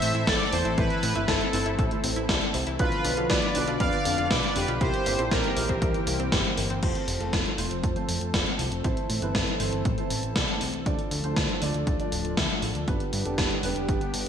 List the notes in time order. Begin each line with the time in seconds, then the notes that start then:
Already playing: E3 A3 C4 E4 A4 C5 E5
0.02 A2 C4, open hi-hat
0.15 A2 E4, closed hi-hat
0.27 A1 A3 C4 E4 A4 D5, kick, snare, closed hi-hat
0.40 closed hi-hat
0.53 E2 C4 A4 C5, open hi-hat
0.65 A1 E4, closed hi-hat
0.78 A1 A3 C4 E4 A4 B4, kick, closed hi-hat
0.90 closed hi-hat
1.03 A2 C4, open hi-hat
1.15 G1 A3 C4 E4 B4, closed hi-hat
1.28 G1 A3 E4 A4, kick, snare, closed hi-hat
1.41 closed hi-hat
1.53 G1 A3 C4 E4 C5, open hi-hat
1.66 G1 E4, closed hi-hat
1.79 A1 A3, kick, closed hi-hat
1.91 A3 C4 E4 C5, closed hi-hat
2.04 A1 C4, open hi-hat
2.16 A1 E4, closed hi-hat
2.29 C2 A3 C4 E4 D5, kick, snare, closed hi-hat
2.42 closed hi-hat
2.54 C2 C4, open hi-hat
2.67 C2 E4, closed hi-hat
2.79 B1 D3 F3 B3 D4 F4 B4, kick, closed hi-hat
2.92 closed hi-hat
3.05 B1 D4, open hi-hat
3.17 B1 F3 B3 D4 F4 A4, closed hi-hat
3.30 B1 B3 B4 D5, kick, snare, closed hi-hat
3.42 closed hi-hat
3.55 B1 F3 B3 D4 B4, open hi-hat
3.68 B1 F4, closed hi-hat
3.80 F1 B3 D5 F5, kick, closed hi-hat
3.93 F3 B3 D4 B4, closed hi-hat
4.05 F1 D4, open hi-hat
4.18 F1 F4, closed hi-hat
4.31 B1 F3 B3 D4 B4 D5, kick, snare, closed hi-hat
4.43 closed hi-hat
4.56 F1 D4 G4 B4, open hi-hat
4.68 B1 F4, closed hi-hat
4.81 C2 E3 G3 A#3 C4 E4 G4 A#4 C5, kick, closed hi-hat
4.94 closed hi-hat
5.06 G1 A#3, open hi-hat
5.19 A#1 G3 C4 E4 A4, closed hi-hat
5.31 A#1 G3 G4 A#4, kick, snare, closed hi-hat
5.44 closed hi-hat
5.57 A#1 G3 A#3 C4 E4 A#4, open hi-hat
5.69 A#1 C4, kick, closed hi-hat
5.82 C2 G3, kick, closed hi-hat
5.94 G3 C4 E4 A#4, closed hi-hat
6.07 C2 A#3, open hi-hat
6.20 C2 C4, closed hi-hat
6.32 G1 G3 C4 E4 C5, kick, snare, closed hi-hat
6.45 closed hi-hat
6.57 G1 A#3, open hi-hat
6.70 G1 C4, closed hi-hat
6.83 F1 F3 A3 C4 F4 A4 C5, kick, closed hi-hat, crash
6.95 closed hi-hat
7.08 F1, open hi-hat
7.21 F1 A3 C4 F4 A4, closed hi-hat
7.33 F1, kick, snare, closed hi-hat
7.46 closed hi-hat
7.58 F1 A3 C4 F4 C5, open hi-hat
7.71 F1, closed hi-hat
7.84 F2, kick, closed hi-hat
7.96 A3 C4 F4 C5, closed hi-hat
8.09 F2, open hi-hat
8.21 F2, closed hi-hat
8.34 F1 A3 C4 F4 D5, kick, snare, closed hi-hat
8.47 closed hi-hat
8.59 C2, open hi-hat
8.72 F1, closed hi-hat
8.84 A1 E3 A3 C4 E4 C5, kick, closed hi-hat
8.97 closed hi-hat
9.10 A2, open hi-hat
9.22 G1 A3 C4 E4 B4, closed hi-hat
9.35 G1, kick, snare, closed hi-hat
9.47 closed hi-hat
9.60 G1 A3 C4 E4 C5, open hi-hat
9.73 G1, closed hi-hat
9.85 A1, kick, closed hi-hat
9.98 A3 C4 E4 C5, closed hi-hat
10.10 A1, open hi-hat
10.23 A1, closed hi-hat
10.36 C2 A3 C4 E4 D5, kick, snare, closed hi-hat
10.48 closed hi-hat
10.61 C2, open hi-hat
10.74 C2, closed hi-hat
10.86 D2 F3 A3 D4 F4 D5, kick, closed hi-hat
10.99 closed hi-hat
11.11 D2, open hi-hat
11.24 D2 A3 D4 F4 C5, closed hi-hat
11.36 D2, kick, snare, closed hi-hat
11.49 closed hi-hat
11.62 D2 A3 D4 F4 D5, open hi-hat
11.74 D2, closed hi-hat
11.87 D1, kick, closed hi-hat
11.99 A3 D4 F4 D5, closed hi-hat
12.12 D1, open hi-hat
12.25 D1, closed hi-hat
12.37 D2 A3 D4 F4 E5, kick, snare, closed hi-hat
12.50 closed hi-hat
12.62 A1, open hi-hat
12.75 D2, closed hi-hat
12.87 G1 D3 G3 B3 D4 G4 B4, kick, closed hi-hat
13.00 closed hi-hat
13.13 G2, open hi-hat
13.25 F1 G3 B3 D4 A4, closed hi-hat
13.38 F1, kick, snare, closed hi-hat
13.51 closed hi-hat
13.63 F1 G3 B3 D4 B4, open hi-hat
13.76 F1, closed hi-hat
13.89 G1, kick, closed hi-hat
14.01 G3 B3 D4 B4, closed hi-hat
14.14 G1, open hi-hat